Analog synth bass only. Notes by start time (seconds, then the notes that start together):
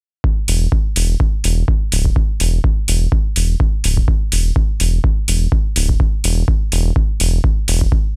0.48 E1
0.96 E1
1.44 E1
1.92 D1
2.40 E1
2.88 E1
3.36 E1
3.84 D1
4.32 E1
4.80 E1
5.28 E1
5.76 D1
6.24 E1
6.72 E1
7.20 E1
7.68 E1